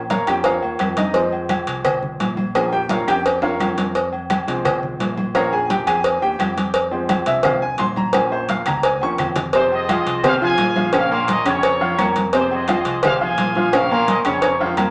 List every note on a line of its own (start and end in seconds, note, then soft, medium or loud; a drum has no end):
0.00 0.22 A#1 medium
0.10 0.28 A#4 medium
0.10 0.28 C#5 medium
0.10 0.28 F5 medium
0.10 0.28 A#5 medium
0.10 cowbell medium
0.10 high conga loud
0.10 low timbale medium
0.27 0.60 F2 medium
0.27 0.43 F3 soft
0.27 0.44 A#3 soft
0.27 0.44 C#4 medium
0.27 0.45 G4 medium
0.27 0.45 G5 medium
0.27 cowbell medium
0.27 high conga soft
0.27 low agogo loud
0.27 claves medium
0.44 0.94 F4 medium
0.44 0.94 A#4 medium
0.44 0.94 C#5 medium
0.44 0.94 F5 medium
0.44 cowbell loud
0.44 high conga soft
0.63 0.79 D#2 medium
0.63 high conga soft
0.63 low agogo loud
0.79 1.62 F2 medium
0.79 cowbell medium
0.79 high conga medium
0.79 low timbale medium
0.79 low agogo loud
0.79 claves medium
0.97 1.30 D#4 medium
0.97 1.30 D#5 medium
0.97 cowbell medium
0.97 high conga medium
1.14 2.50 F3 medium
1.14 2.51 G#3 medium
1.14 2.51 C4 medium
1.14 cowbell loud
1.14 high conga soft
1.32 high conga soft
1.32 low agogo medium
1.49 cowbell medium
1.49 high conga loud
1.49 low timbale medium
1.49 low agogo loud
1.49 claves medium
1.67 2.16 C2 medium
1.67 cowbell medium
1.67 low agogo medium
1.85 cowbell loud
1.85 high conga soft
1.85 low conga medium
1.85 low agogo loud
1.85 claves medium
2.03 high conga soft
2.03 low conga medium
2.20 3.02 A#1 medium
2.20 cowbell medium
2.20 high conga medium
2.20 low timbale medium
2.20 low agogo medium
2.37 high conga medium
2.37 low agogo medium
2.55 2.78 F3 medium
2.55 2.79 A#3 soft
2.55 2.79 C#4 medium
2.55 2.73 G#4 medium
2.55 2.72 G#5 medium
2.55 cowbell loud
2.55 high conga soft
2.55 low agogo loud
2.55 claves medium
2.72 2.90 G4 medium
2.72 2.90 G5 loud
2.72 high conga soft
2.72 low agogo medium
2.89 3.08 F4 medium
2.89 3.08 A#4 medium
2.89 3.08 C#5 medium
2.89 3.07 F5 medium
2.89 cowbell medium
2.89 high conga loud
2.89 low timbale medium
3.08 3.57 F2 medium
3.08 3.41 G4 medium
3.08 3.41 G5 loud
3.08 cowbell medium
3.08 high conga soft
3.08 high timbale medium
3.08 low agogo loud
3.08 claves medium
3.26 cowbell loud
3.26 high conga soft
3.42 3.92 F4 medium
3.42 3.92 A#4 medium
3.42 3.92 C#5 medium
3.42 3.91 F5 loud
3.42 high conga soft
3.42 high timbale loud
3.42 low agogo medium
3.60 4.42 F2 loud
3.60 cowbell medium
3.60 high conga medium
3.60 low timbale medium
3.60 low agogo loud
3.60 claves medium
3.77 cowbell medium
3.77 high conga medium
3.77 low timbale medium
3.95 cowbell loud
3.95 high conga soft
4.13 high conga soft
4.13 low agogo medium
4.30 cowbell medium
4.30 high conga loud
4.30 low timbale medium
4.30 low agogo loud
4.30 claves medium
4.47 4.96 C2 medium
4.47 5.31 F3 medium
4.47 5.31 G#3 soft
4.47 5.31 C4 medium
4.47 cowbell medium
4.47 low agogo medium
4.65 cowbell loud
4.65 high conga soft
4.65 low conga medium
4.65 low agogo loud
4.65 claves medium
4.83 high conga soft
4.83 low conga medium
4.99 5.81 A#1 medium
4.99 cowbell medium
4.99 high conga medium
4.99 low timbale medium
4.99 low agogo medium
5.17 high conga medium
5.17 low agogo medium
5.34 6.70 F3 medium
5.34 6.71 A#3 medium
5.34 6.71 C#4 medium
5.34 5.52 A#4 medium
5.34 5.52 C#5 medium
5.34 5.52 F5 medium
5.34 5.52 A#5 loud
5.34 cowbell loud
5.34 high conga soft
5.34 low agogo loud
5.34 claves medium
5.52 5.70 G#4 medium
5.52 5.70 G#5 loud
5.52 high conga soft
5.52 low agogo medium
5.70 5.87 G4 medium
5.70 5.87 G5 medium
5.70 cowbell medium
5.70 high conga loud
5.70 low timbale medium
5.87 6.20 F2 loud
5.87 6.20 G#4 medium
5.87 6.20 G#5 loud
5.87 cowbell medium
5.87 high conga soft
5.87 low agogo loud
5.87 claves medium
6.04 cowbell loud
6.04 high conga soft
6.22 6.38 D#2 medium
6.22 6.71 G4 medium
6.22 6.71 G5 loud
6.22 high conga soft
6.22 low agogo medium
6.39 7.21 F2 medium
6.39 cowbell medium
6.39 high conga medium
6.39 low timbale medium
6.39 low agogo loud
6.39 claves medium
6.57 cowbell medium
6.57 high conga medium
6.74 cowbell loud
6.74 high conga soft
6.91 7.43 F3 medium
6.91 7.43 G#3 medium
6.91 7.44 C4 medium
6.91 high conga soft
6.91 low agogo medium
7.09 cowbell medium
7.09 high conga loud
7.09 low timbale medium
7.09 low agogo loud
7.09 claves medium
7.26 7.75 C2 medium
7.26 7.44 E5 loud
7.26 cowbell medium
7.26 low agogo medium
7.43 7.60 F3 medium
7.43 7.60 G#3 soft
7.43 7.61 C4 medium
7.43 7.62 F5 medium
7.43 cowbell loud
7.43 high conga soft
7.43 low conga medium
7.43 low agogo loud
7.43 claves medium
7.62 7.79 G#5 loud
7.62 high conga soft
7.78 8.61 A#1 medium
7.78 7.96 C6 loud
7.78 cowbell medium
7.78 high conga medium
7.78 low timbale medium
7.78 low agogo medium
7.96 8.14 A#5 loud
7.96 high conga medium
7.96 low agogo medium
8.13 8.64 F3 medium
8.13 8.64 A#3 medium
8.13 8.65 C#4 medium
8.13 8.32 G#5 medium
8.13 cowbell loud
8.13 high conga loud
8.13 low agogo loud
8.13 claves medium
8.32 8.49 C5 medium
8.32 low agogo medium
8.49 8.66 F5 medium
8.49 cowbell medium
8.49 high conga medium
8.49 low timbale medium
8.66 8.99 C#2 medium
8.66 8.84 A#5 loud
8.66 cowbell medium
8.66 low conga medium
8.66 low agogo loud
8.66 claves medium
8.83 9.02 G#5 loud
8.83 cowbell loud
9.01 9.17 D#2 medium
9.01 9.18 F3 medium
9.01 9.18 A#3 soft
9.01 9.18 C#4 medium
9.01 9.13 C#6 loud
9.01 low agogo medium
9.18 10.00 F2 medium
9.18 cowbell medium
9.18 low conga loud
9.18 low timbale medium
9.18 low agogo loud
9.18 claves medium
9.36 cowbell medium
9.36 low conga loud
9.53 9.83 C3 medium
9.53 9.83 C4 medium
9.53 10.21 F4 medium
9.53 9.71 G#4 medium
9.53 9.83 C5 medium
9.53 9.63 C5 medium
9.53 cowbell loud
9.53 high conga soft
9.72 10.24 G#4 medium
9.72 10.25 C5 medium
9.72 10.21 D#5 loud
9.72 high conga soft
9.72 low agogo medium
9.89 10.18 F3 medium
9.89 10.18 F4 medium
9.89 10.18 F5 medium
9.89 cowbell medium
9.89 high conga loud
9.89 low timbale medium
9.89 low agogo loud
9.89 claves medium
10.06 10.55 C2 medium
10.06 cowbell medium
10.06 low agogo medium
10.24 10.38 C3 medium
10.24 10.39 C4 medium
10.24 10.90 G#4 medium
10.24 10.39 C5 medium
10.24 10.41 C5 medium
10.24 10.34 F5 loud
10.24 cowbell loud
10.24 high conga soft
10.24 low conga medium
10.24 low agogo loud
10.24 claves medium
10.41 10.70 F3 medium
10.41 10.70 F4 medium
10.41 10.91 C5 medium
10.41 10.70 F5 medium
10.41 10.91 F5 medium
10.41 10.91 G#5 loud
10.41 high conga soft
10.58 11.40 A#1 medium
10.58 cowbell medium
10.58 high conga medium
10.58 low timbale medium
10.58 low agogo medium
10.76 10.91 F3 medium
10.76 10.91 F4 medium
10.76 10.91 F5 medium
10.76 high conga medium
10.76 low agogo medium
10.93 11.08 C#3 medium
10.93 11.08 C#4 medium
10.93 11.44 A#4 medium
10.93 11.08 C#5 medium
10.93 11.45 C#5 medium
10.93 11.10 F5 loud
10.93 cowbell loud
10.93 high conga soft
10.93 low agogo loud
10.93 claves medium
11.11 11.40 A#2 loud
11.11 11.40 A#3 loud
11.11 11.40 A#4 medium
11.11 11.28 F5 loud
11.11 high conga soft
11.11 low agogo medium
11.28 11.46 D#5 loud
11.28 cowbell medium
11.28 high conga loud
11.28 low timbale medium
11.45 11.94 F2 medium
11.45 11.74 C#3 medium
11.45 11.75 C#4 medium
11.45 12.12 F4 medium
11.45 12.12 A#4 medium
11.45 11.75 C#5 medium
11.45 12.16 C#5 loud
11.45 cowbell medium
11.45 high conga soft
11.45 low agogo loud
11.45 claves medium
11.63 cowbell loud
11.63 high conga soft
11.81 11.95 F3 medium
11.81 11.95 F4 medium
11.81 11.95 F5 medium
11.81 high conga soft
11.81 low agogo loud
11.98 12.80 F2 medium
11.98 12.27 A#3 medium
11.98 12.27 A#4 medium
11.98 12.27 A#5 medium
11.98 cowbell medium
11.98 high conga medium
11.98 low timbale medium
11.98 low agogo loud
11.98 claves medium
12.16 cowbell medium
12.16 high conga medium
12.33 12.62 C3 medium
12.33 12.63 C4 medium
12.33 12.99 F4 medium
12.33 12.50 G#4 medium
12.33 12.63 C5 medium
12.33 12.49 C5 medium
12.33 cowbell loud
12.33 high conga soft
12.51 13.03 G#4 medium
12.51 13.03 C5 medium
12.51 13.04 D#5 loud
12.51 high conga soft
12.51 low agogo medium
12.68 12.97 F3 medium
12.68 12.97 F4 medium
12.68 12.97 F5 medium
12.68 cowbell medium
12.68 high conga loud
12.68 low timbale medium
12.68 low agogo loud
12.68 claves medium
12.85 13.34 C2 loud
12.85 cowbell medium
12.85 low agogo medium
13.03 13.18 C3 medium
13.03 13.18 C4 medium
13.03 13.70 G#4 medium
13.03 13.19 C5 medium
13.03 13.13 F5 loud
13.03 cowbell loud
13.03 high conga soft
13.03 low conga loud
13.03 low agogo loud
13.03 claves medium
13.21 13.50 F3 medium
13.21 13.50 F4 medium
13.21 13.69 C5 medium
13.21 13.69 F5 medium
13.21 13.50 F5 medium
13.21 13.70 G#5 loud
13.21 high conga soft
13.37 14.19 A#1 medium
13.37 cowbell medium
13.37 high conga medium
13.37 low timbale medium
13.37 low agogo medium
13.55 13.70 F3 medium
13.55 13.71 F4 medium
13.55 13.71 F5 medium
13.55 high conga medium
13.55 low agogo medium
13.73 13.88 C#3 medium
13.73 13.88 C#4 medium
13.73 14.24 A#4 medium
13.73 14.24 C#5 medium
13.73 13.88 C#5 medium
13.73 13.90 F5 medium
13.73 cowbell loud
13.73 high conga soft
13.73 low agogo loud
13.73 claves medium
13.90 14.20 A#2 loud
13.90 14.20 A#3 loud
13.90 14.20 A#4 loud
13.90 14.07 F5 medium
13.90 high conga soft
13.90 low agogo medium
14.07 14.17 D#5 medium
14.07 cowbell medium
14.07 high conga loud
14.07 low timbale medium
14.25 14.74 F2 medium
14.25 14.54 C#3 medium
14.25 14.55 C#4 medium
14.25 14.90 F4 medium
14.25 14.90 A#4 medium
14.25 14.66 C#5 medium
14.25 14.55 C#5 medium
14.25 cowbell medium
14.25 high conga soft
14.25 low agogo loud
14.25 claves medium
14.42 cowbell loud
14.42 high conga soft
14.42 high timbale loud
14.60 14.75 F3 medium
14.60 14.75 F4 medium
14.60 14.75 F5 medium
14.60 high conga soft
14.60 low agogo medium
14.66 low timbale medium
14.77 14.90 F2 medium
14.77 14.90 A#3 medium
14.77 14.90 A#4 medium
14.77 14.90 A#5 medium
14.77 cowbell medium
14.77 high conga medium
14.77 low timbale medium
14.77 low agogo loud
14.77 claves medium